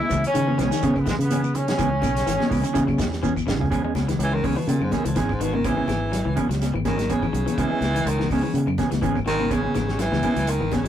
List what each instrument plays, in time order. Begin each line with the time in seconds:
Already playing: tenor saxophone E4, trumpet E4
0.00 muted clean electric guitar stroke, high conga
0.09 fingered electric bass C#2, clean electric guitar E3, muted clean electric guitar stroke, kick, closed hi-hat, high conga, claves, shekere
0.24 tenor saxophone C#4, trumpet C#4, closed hi-hat, shekere
0.34 fingered electric bass C#3, clean electric guitar D#3, muted clean electric guitar stroke, closed hi-hat, shekere
0.47 clean electric guitar E3 B3 C#4 G#4, high conga
0.58 fingered electric bass C#2, clean electric guitar E3 B3 C#4 G#4, trumpet C#4, tenor saxophone C#4, snare, closed hi-hat, low conga, claves, shekere
0.71 clean electric guitar D#3, muted clean electric guitar stroke, snare, closed hi-hat, shekere
0.82 fingered electric bass C#3, clean electric guitar B3 C#4 G#4, muted clean electric guitar stroke, kick, closed hi-hat, high conga, shekere
0.95 clean electric guitar C#3, tenor saxophone B3, muted clean electric guitar stroke, kick, low conga, claves
1.00 trumpet B3
1.06 clean electric guitar E3, tenor saxophone G#3, trumpet G#3, muted clean electric guitar stroke, kick, snare, closed hi-hat, high conga, shekere
1.19 fingered electric bass C#3, tenor saxophone B3, closed hi-hat, shekere
1.23 trumpet B3
1.30 clean electric guitar E3 B3 C#4 G#4, closed hi-hat, high conga, shekere
1.43 muted clean electric guitar stroke, claves, shekere
1.54 tenor saxophone C#4, trumpet C#4, muted clean electric guitar stroke, closed hi-hat, low conga, shekere
1.67 clean electric guitar B3 C#4 G#4, snare, closed hi-hat
1.77 fingered electric bass C#2, clean electric guitar E3 B3 C#4 G#4, kick, closed hi-hat, claves, shekere
1.91 muted clean electric guitar stroke
2.01 fingered electric bass B1, clean electric guitar C#3, muted clean electric guitar stroke, kick, closed hi-hat, high conga, claves, shekere
2.16 snare, closed hi-hat, shekere
2.26 fingered electric bass G#1, clean electric guitar E3, muted clean electric guitar stroke, snare, closed hi-hat, shekere
2.38 clean electric guitar B3 C#4 G#4, snare, high conga
2.49 fingered electric bass C#2, clean electric guitar E3 B3 C#4 G#4, kick, open hi-hat, low conga, claves, shekere
2.63 clean electric guitar C#3, muted clean electric guitar stroke, closed hi-hat, shekere
2.73 fingered electric bass C#3, clean electric guitar E3 B3 C#4 G#4, kick, closed hi-hat, high conga, shekere
2.86 clean electric guitar F#3, muted clean electric guitar stroke, kick, high conga, claves
2.98 fingered electric bass E2, clean electric guitar G#3, muted clean electric guitar stroke, kick, snare, closed hi-hat, high conga, shekere
3.12 snare, shekere
3.23 clean electric guitar E3 B3 C#4 G#4, kick, high conga, shekere
3.36 muted clean electric guitar stroke, kick, claves, shekere
3.47 fingered electric bass G#1, clean electric guitar C#3, muted clean electric guitar stroke, snare, low conga, shekere
3.59 fingered electric bass C#2, clean electric guitar B3 C#4 G#4, floor tom
3.70 fingered electric bass C#2, clean electric guitar E3 B3 C#4 G#4, kick, closed hi-hat, claves
3.84 clean electric guitar G#3 B3 C#4 G#4
3.95 fingered electric bass C#2, muted clean electric guitar stroke, snare, closed hi-hat, high conga, claves
4.08 clean electric guitar E3, snare, closed hi-hat
4.19 fingered electric bass C#2, baritone saxophone E3, muted clean electric guitar stroke, closed hi-hat
4.32 baritone saxophone D#3, clean electric guitar E3, muted clean electric guitar stroke
4.43 fingered electric bass C#2, baritone saxophone C#3, clean electric guitar E3 B3 C#4 G#4, kick, open hi-hat, high conga, low conga, claves
4.56 baritone saxophone B2, clean electric guitar E3, muted clean electric guitar stroke
4.67 baritone saxophone A#2, fingered electric bass C#3, closed hi-hat, high conga
4.80 fingered electric bass F#2, baritone saxophone G#2, clean electric guitar C#3, muted clean electric guitar stroke, claves
4.92 baritone saxophone F#2, clean electric guitar E3 B3 C#4 G#4, kick, snare, closed hi-hat, high conga
5.05 fingered electric bass C#2, baritone saxophone F2, clean electric guitar E3, muted clean electric guitar stroke, closed hi-hat
5.16 fingered electric bass G#1, baritone saxophone E2, clean electric guitar E3 B3 C#4 G#4, kick, snare, closed hi-hat
5.29 baritone saxophone G#2, kick, claves
5.40 baritone saxophone B2, clean electric guitar D#3, muted clean electric guitar stroke, closed hi-hat, low conga
5.53 clean electric guitar C#3, baritone saxophone D#3, muted clean electric guitar stroke, high conga
5.64 clean electric guitar E3 B3 C#4 G#4, baritone saxophone E3, kick, closed hi-hat, claves
5.77 clean electric guitar C#3 B3 C#4 G#4
5.88 fingered electric bass G#1, clean electric guitar E3, muted clean electric guitar stroke, snare, closed hi-hat, high conga, claves
6.12 clean electric guitar F#3, muted clean electric guitar stroke, snare, closed hi-hat
6.25 fingered electric bass C#2, clean electric guitar E3, muted clean electric guitar stroke
6.36 clean electric guitar E3 B3 C#4 G#4, kick, closed hi-hat, high conga, low conga, claves
6.49 fingered electric bass C#2, clean electric guitar F#3, muted clean electric guitar stroke, snare, closed hi-hat
6.61 snare, closed hi-hat, high conga
6.73 fingered electric bass G#1, clean electric guitar E3, muted clean electric guitar stroke, claves
6.85 baritone saxophone D#3, clean electric guitar E3 B3 C#4 G#4, kick, snare, closed hi-hat, high conga
6.98 clean electric guitar F#3, muted clean electric guitar stroke, snare, closed hi-hat, high conga
7.09 baritone saxophone C#3, clean electric guitar E3 B3 C#4 G#4, kick, closed hi-hat
7.23 clean electric guitar E3, kick, claves
7.33 fingered electric bass B1, clean electric guitar F#3, muted clean electric guitar stroke, closed hi-hat, low conga
7.46 clean electric guitar E3, muted clean electric guitar stroke, closed hi-hat, high conga
7.58 fingered electric bass C#2, clean electric guitar E3 B3 C#4 G#4, baritone saxophone E3, kick, closed hi-hat, claves
7.70 clean electric guitar G#3 B3 C#4 G#4
7.81 fingered electric bass C#2, muted clean electric guitar stroke, snare, closed hi-hat, high conga, claves
7.95 clean electric guitar E3, closed hi-hat, low conga
8.05 fingered electric bass C#2, baritone saxophone D#3, muted clean electric guitar stroke, closed hi-hat
8.19 clean electric guitar E3, muted clean electric guitar stroke, snare, high conga
8.30 fingered electric bass C#2, baritone saxophone C#3, clean electric guitar E3 B3 C#4 G#4, kick, open hi-hat, high conga, low conga, claves
8.43 clean electric guitar E3, muted clean electric guitar stroke
8.54 fingered electric bass C#3, closed hi-hat, high conga
8.67 fingered electric bass F#2, clean electric guitar C#3, muted clean electric guitar stroke, claves
8.78 clean electric guitar E3 B3 C#4 G#4, kick, snare, closed hi-hat, high conga
8.90 fingered electric bass C#2, clean electric guitar E3, snare, closed hi-hat, high conga
9.02 fingered electric bass G#1, clean electric guitar E3 B3 C#4 G#4, kick, closed hi-hat
9.16 kick, claves
9.26 clean electric guitar D#3, baritone saxophone D#3, muted clean electric guitar stroke, snare, closed hi-hat, low conga
9.39 clean electric guitar C#3, muted clean electric guitar stroke, high conga
9.50 baritone saxophone C#3, clean electric guitar E3 B3 C#4 G#4, kick, closed hi-hat, claves
9.63 clean electric guitar C#3 B3 C#4 G#4
9.74 fingered electric bass G#1, clean electric guitar E3, muted clean electric guitar stroke, snare, closed hi-hat, high conga, claves
9.88 snare, low conga
9.98 baritone saxophone E3, clean electric guitar F#3, muted clean electric guitar stroke, snare, closed hi-hat
10.12 fingered electric bass C#2, clean electric guitar E3, muted clean electric guitar stroke, snare, high conga
10.23 clean electric guitar E3 B3 C#4 G#4, kick, closed hi-hat, high conga, low conga, claves
10.36 fingered electric bass C#2, clean electric guitar F#3, muted clean electric guitar stroke, closed hi-hat
10.47 baritone saxophone D#3, closed hi-hat
10.60 fingered electric bass G#1, clean electric guitar E3, muted clean electric guitar stroke, claves
10.72 baritone saxophone C#3, clean electric guitar E3 B3 C#4 G#4, kick, snare, closed hi-hat, high conga
10.85 clean electric guitar F#3, muted clean electric guitar stroke